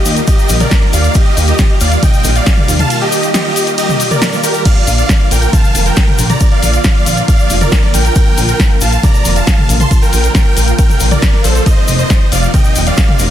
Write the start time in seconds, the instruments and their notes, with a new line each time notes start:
Already playing: supersaw synth G4 D#5
0.05 analog synth bass D#2, analog synth pad D#3 G3 A#3 F4, open hi-hat, shaker
0.17 closed hi-hat, shaker
0.27 analog synth pad D#3 G3 A#3 F4, supersaw synth G4 D#5, kick, closed hi-hat, ride, shaker
0.38 analog synth pad D#3 G3 A#3 F4, closed hi-hat, shaker
0.49 analog synth bass A#1, open hi-hat, shaker
0.60 analog synth pad D#3 G3 A#3 F4, supersaw synth A#4 D5, closed hi-hat, mid tom, shaker
0.71 kick, snare, closed hi-hat, ride, shaker
0.82 analog synth pad D#3 G3 A#3 F4, snare, closed hi-hat
0.93 analog synth bass D#2, supersaw synth D5 F5, open hi-hat, shaker
1.04 analog synth pad D#3 G3 A#3 F4, closed hi-hat, shaker
1.14 analog synth pad D#3 G3 A#3 F4, supersaw synth G4 D#5, kick, closed hi-hat, ride, shaker
1.26 closed hi-hat
1.37 analog synth bass D#2, analog synth pad D#3 G3 A#3 F4, open hi-hat, shaker
1.48 supersaw synth G4 D#5, closed hi-hat, shaker
1.58 analog synth pad D#3 G3 A#3 F4, kick, snare, closed hi-hat, ride, shaker
1.70 closed hi-hat
1.80 analog synth bass D#2, analog synth pad D#3 G3 A#3 F4, supersaw synth D5 F5, open hi-hat, shaker
1.92 closed hi-hat, shaker
2.03 analog synth pad D#3 G3 A#3 F4, supersaw synth D#5 G5, kick, closed hi-hat, mid tom, ride, shaker
2.13 analog synth pad D#3 G3 A#3 F4, closed hi-hat, shaker
2.24 analog synth bass A#1, open hi-hat, shaker
2.35 analog synth pad D#3 G3 A#3 F4, supersaw synth D5 F5, closed hi-hat, shaker
2.46 kick, snare, closed hi-hat, ride, shaker
2.57 analog synth pad D#3 G3 A#3 F4, closed hi-hat, mid tom
2.68 analog synth bass D#2, open hi-hat, shaker
2.79 analog synth pad D#3 G3 A#3 F4, supersaw synth F5 A5, closed hi-hat, mid tom, shaker
2.90 analog synth pad D#3 G3 A#3 F4, closed hi-hat, ride, shaker
3.01 supersaw synth G4 D#5, closed hi-hat
3.12 analog synth pad D#3 G3 A#3 F4, open hi-hat, shaker
3.23 closed hi-hat, shaker
3.34 analog synth pad D#3 G3 A#3 F4, supersaw synth G4 D#5, snare, closed hi-hat, ride, shaker
3.45 closed hi-hat
3.56 analog synth pad D#3 G3 A#3 F4, open hi-hat, shaker
3.67 closed hi-hat, shaker
3.78 analog synth pad D#3 G3 A#3 F4, supersaw synth G4 D#5, closed hi-hat, ride, shaker
3.88 analog synth pad D#3 G3 A#3 F4, closed hi-hat, mid tom, shaker
4.00 open hi-hat, shaker
4.10 analog synth pad D#3 G3 A#3 F4, supersaw synth A#4 D5, closed hi-hat, mid tom, shaker
4.22 snare, closed hi-hat, ride, shaker
4.33 analog synth pad D#3 G3 A#3 F4, snare, closed hi-hat, shaker
4.44 supersaw synth G4 A#4, open hi-hat, shaker
4.54 analog synth pad D#3 G3 A#3 F4, closed hi-hat, shaker
4.65 analog synth pad D3 F3 A#3 F4, supersaw synth D5 F5, kick, closed hi-hat, ride, crash, shaker
4.76 closed hi-hat
4.87 analog synth bass A#1, analog synth pad D3 F3 A#3 F4, open hi-hat, shaker
4.98 supersaw synth D5 F5, closed hi-hat, shaker
5.09 analog synth pad D3 F3 A#3 F4, kick, snare, closed hi-hat, ride, shaker
5.20 closed hi-hat
5.31 analog synth bass A#1, analog synth pad D3 F3 A#3 F4, supersaw synth A#4 G5, open hi-hat, shaker
5.42 closed hi-hat, shaker
5.53 analog synth pad D3 F3 A#3 F4, supersaw synth F5 A5, kick, closed hi-hat, mid tom, ride, shaker
5.64 analog synth pad D3 F3 A#3 F4, closed hi-hat, shaker
5.75 analog synth bass F1, open hi-hat, shaker
5.86 analog synth pad D3 F3 A#3 F4, supersaw synth A#4 G5, closed hi-hat, shaker
5.96 kick, snare, closed hi-hat, ride, shaker
6.08 analog synth pad D3 F3 A#3 F4, closed hi-hat, mid tom
6.18 analog synth bass A#1, open hi-hat, shaker
6.30 analog synth pad D3 F3 A#3 F4, supersaw synth D5 A#5, closed hi-hat, mid tom, shaker
6.40 analog synth pad D3 F3 A#3 F4, kick, closed hi-hat, ride, shaker
6.52 supersaw synth D5 F5, closed hi-hat
6.62 analog synth bass A#1, analog synth pad D3 F3 A#3 F4, open hi-hat, shaker
6.73 closed hi-hat, shaker
6.84 analog synth pad D3 F3 A#3 F4, supersaw synth F5, kick, snare, closed hi-hat, ride, shaker
6.95 closed hi-hat
7.06 analog synth bass A#1, analog synth pad D3 F3 A#3 F4, open hi-hat, shaker
7.17 closed hi-hat, shaker
7.28 analog synth pad D3 F3 A#3 F4, supersaw synth D5 F5, kick, closed hi-hat, ride, shaker
7.39 analog synth pad D3 F3 A#3 F4, closed hi-hat, shaker
7.50 analog synth bass F1, open hi-hat, shaker
7.61 analog synth pad D3 F3 A#3 F4, supersaw synth A#4 D5, closed hi-hat, mid tom, shaker
7.72 kick, snare, closed hi-hat, ride, shaker
7.83 analog synth pad D3 F3 A#3 F4, snare, closed hi-hat
7.94 analog synth bass A#1, supersaw synth A#4 G5, open hi-hat, shaker
8.05 analog synth pad D3 F3 A#3 F4, closed hi-hat, shaker
8.15 analog synth pad D3 F3 A#3 F4, supersaw synth A#4 G5, kick, closed hi-hat, ride, shaker
8.27 closed hi-hat
8.38 analog synth bass A#1, analog synth pad D3 F3 A#3 F4, open hi-hat, shaker
8.48 supersaw synth A#4 G5, closed hi-hat, shaker
8.60 analog synth pad D3 F3 A#3 F4, kick, snare, closed hi-hat, ride, shaker
8.71 closed hi-hat
8.81 analog synth bass A#1, analog synth pad D3 F3 A#3 F4, supersaw synth F5 A5, open hi-hat, shaker
8.92 closed hi-hat, shaker
9.03 analog synth pad D3 F3 A#3 F4, supersaw synth D5 A#5, kick, closed hi-hat, mid tom, ride, shaker
9.14 analog synth pad D3 F3 A#3 F4, closed hi-hat, shaker
9.25 analog synth bass F1, open hi-hat, shaker
9.36 analog synth pad D3 F3 A#3 F4, supersaw synth F5 A5, closed hi-hat, shaker
9.47 kick, snare, closed hi-hat, ride, shaker
9.58 analog synth pad D3 F3 A#3 F4, closed hi-hat, mid tom
9.69 analog synth bass A#1, open hi-hat, shaker
9.80 analog synth pad D3 F3 A#3 F4, supersaw synth A5 C6, closed hi-hat, mid tom, shaker
9.91 analog synth pad D3 F3 A#3 F4, kick, closed hi-hat, ride, shaker
10.02 supersaw synth A#4 G5, closed hi-hat, shaker
10.13 analog synth bass A#1, analog synth pad D3 F3 A#3 F4, open hi-hat, shaker
10.24 closed hi-hat, shaker
10.35 analog synth pad D3 F3 A#3 F4, supersaw synth A#4 G5, kick, snare, closed hi-hat, ride, shaker
10.46 closed hi-hat
10.57 analog synth bass A#1, analog synth pad D3 F3 A#3 F4, open hi-hat, shaker
10.68 closed hi-hat, shaker
10.78 analog synth pad D3 F3 A#3 F4, supersaw synth A#4 G5, kick, closed hi-hat, ride, shaker
10.90 analog synth pad D3 F3 A#3 F4, closed hi-hat, mid tom, shaker
11.00 analog synth bass A#1, open hi-hat, shaker
11.11 analog synth pad D3 F3 A#3 F4, supersaw synth A#4 D5, closed hi-hat, mid tom, shaker
11.22 kick, snare, closed hi-hat, ride, shaker
11.33 analog synth pad D3 F3 A#3 F4, snare, closed hi-hat
11.44 analog synth bass A#1, supersaw synth A4 C5, open hi-hat, shaker
11.55 analog synth pad D3 F3 A#3 F4, closed hi-hat, shaker
11.66 analog synth pad C3 F3 A#3 D#4, supersaw synth C5 D#5, kick, closed hi-hat, ride, shaker
11.77 closed hi-hat
11.88 analog synth bass F1, analog synth pad C3 F3 A#3 D#4, open hi-hat, shaker
11.99 supersaw synth C5 D#5, closed hi-hat, shaker
12.10 analog synth pad C3 F3 A#3 D#4, kick, snare, closed hi-hat, ride, shaker
12.21 closed hi-hat
12.32 analog synth bass F1, analog synth pad C3 F3 A#3 D#4, supersaw synth D5 F5, open hi-hat, shaker
12.43 closed hi-hat, shaker
12.54 analog synth pad C3 F3 A#3 D#4, supersaw synth D#5 G5, kick, closed hi-hat, mid tom, ride, shaker
12.64 analog synth pad C3 F3 A#3 D#4, closed hi-hat, shaker
12.76 analog synth bass D#1, open hi-hat, shaker
12.86 analog synth pad C3 F3 A#3 D#4, supersaw synth D5 F5, closed hi-hat, shaker
12.97 kick, snare, closed hi-hat, ride, shaker
13.08 analog synth pad C3 F3 A#3 D#4, closed hi-hat, mid tom
13.19 analog synth bass F1, open hi-hat, shaker